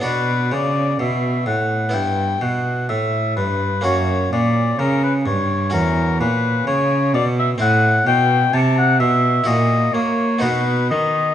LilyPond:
<<
  \new Staff \with { instrumentName = "Oboe" } { \time 4/4 \key b \minor \tempo 4 = 64 b'8 d''8 e''8 fis''8 g''8 fis''8 e''8 b'8 | cis''8 d''8 ais'16 b'16 cis''8 ais'8 b'8 cis''8 d''16 e''16 | \key a \dorian fis''8 g''8 a''16 fis''16 e''8 dis''8 cis''8 b'8 dis''8 | }
  \new Staff \with { instrumentName = "Harpsichord" } { \time 4/4 \key b \minor <b d' fis'>2 <b e'>2 | <ais cis' fis'>2 <cis' fis'>2 | \key a \dorian <c' e'>2 <e' fis'>4 <b dis' fis'>4 | }
  \new Staff \with { instrumentName = "Harpsichord" } { \clef bass \time 4/4 \key b \minor b,8 cis8 b,8 a,8 g,8 b,8 a,8 g,8 | fis,8 ais,8 cis8 g,8 e,8 ais,8 cis8 b,8 | \key a \dorian a,8 b,8 c8 b,8 ais,8 ais8 b,8 dis8 | }
  \new Staff \with { instrumentName = "Cello" } { \clef bass \time 4/4 \key b \minor b,8 cis8 b,8 a,8 g,8 b,8 a,8 g,8 | fis,8 ais,8 cis8 g,8 e,8 ais,8 cis8 b,8 | \key a \dorian a,8 b,8 c8 b,8 ais,8 ais8 b,8 dis8 | }
>>